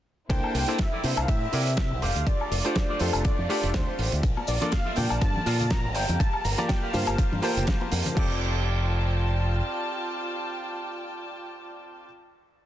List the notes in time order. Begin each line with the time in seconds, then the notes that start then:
0.29 C2 A#3 C4 D4 E4 A4 C5 G5, kick, closed hi-hat, ride
0.44 high woodblock
0.55 C2, open hi-hat
0.67 A#3 D4 E4 A4 A#4 C5 D5, closed hi-hat
0.79 E5, kick, snare, closed hi-hat, ride
0.92 E4 A4 A#4 D5
1.03 C3 A#3 D4 E4 C5 A5, open hi-hat
1.17 C2, muted clean electric guitar stroke, closed hi-hat, high woodblock
1.22 F5
1.28 A2 E5, muted clean electric guitar stroke, kick, closed hi-hat, ride
1.52 C3 E4 A4 A#4 D5, open hi-hat
1.67 closed hi-hat
1.77 kick, snare, closed hi-hat, ride
1.91 C2, muted clean electric guitar stroke
2.01 F1 A3 D4 F4 G4 A4 D5 F5, open hi-hat
2.15 D2, closed hi-hat
2.27 D5, kick, closed hi-hat, ride
2.41 high woodblock
2.51 F1, open hi-hat
2.64 A3 D4 F4 G4 A4 C5 D5, closed hi-hat
2.76 kick, snare, closed hi-hat, ride
2.89 F4 G4 A4 D5
2.99 F2 A3 D4 F4 G4 A4 C5, open hi-hat
3.13 F1, muted clean electric guitar stroke, closed hi-hat, high woodblock
3.24 D5, muted clean electric guitar stroke, kick, closed hi-hat, ride
3.39 F2
3.49 A3 D4 F4 G4 A4 D5, open hi-hat
3.63 F1, closed hi-hat
3.74 D2 C5, kick, snare, closed hi-hat, ride
3.87 muted clean electric guitar stroke
3.98 A1, muted clean electric guitar stroke, open hi-hat
4.12 D2, closed hi-hat
4.23 A#1 A#3 F4 D5 A5, kick, closed hi-hat, ride, maracas
4.37 high bongo, high woodblock
4.48 A#1 D5, open hi-hat, maracas
4.61 A#3 D4 F4 A4 A#4 D5, closed hi-hat, high conga, maracas
4.71 F5, kick, snare, closed hi-hat, ride, maracas
4.86 F4 A4 A#4 E5, high bongo
4.96 A#2 A#3 D4 F4 D5 G5 A5, open hi-hat, high conga, low conga, maracas
5.10 A#1, muted clean electric guitar stroke, closed hi-hat, high woodblock, maracas
5.21 G2 A5, muted clean electric guitar stroke, kick, closed hi-hat, ride, high bongo, maracas
5.36 high conga
5.46 A#2 F4 A4 A#4 D5, open hi-hat, maracas
5.59 closed hi-hat, low conga, maracas
5.70 A#5, kick, snare, closed hi-hat, ride, high bongo, high conga, maracas
5.84 A#1, muted clean electric guitar stroke
5.95 G1 G3 A#3 F4 G4 A4 A#4 F5 G5, open hi-hat, maracas
6.08 F2, closed hi-hat, high bongo, high conga, low conga, maracas
6.19 A5, kick, closed hi-hat, ride, maracas
6.33 high woodblock
6.44 G1 A#5, open hi-hat, maracas
6.58 A#3 F4 G4 A4 A#4 D5 F5 A5, closed hi-hat, high bongo, high conga, maracas
6.68 G5, kick, snare, closed hi-hat, ride, maracas
6.82 G4 A4 A#4 F5
6.93 G2 A#3 F4 G4 C5 F5 A5, open hi-hat, high bongo, low conga, maracas
7.07 G1, muted clean electric guitar stroke, closed hi-hat, high woodblock, maracas
7.18 muted clean electric guitar stroke, kick, closed hi-hat, ride, maracas
7.32 G2, high conga
7.42 A#3 F4 G4 A4 A#4 C5 G5 A5, open hi-hat, high bongo, maracas
7.57 F1, closed hi-hat, low conga, maracas
7.67 kick, snare, closed hi-hat, ride, high conga, maracas
7.81 muted clean electric guitar stroke, high bongo
7.92 F2, muted clean electric guitar stroke, open hi-hat, maracas
8.06 closed hi-hat, high conga, low conga, maracas
8.15 F1 C4 F4 G4 A4 D5 G5 A5, kick, crash
8.19 D5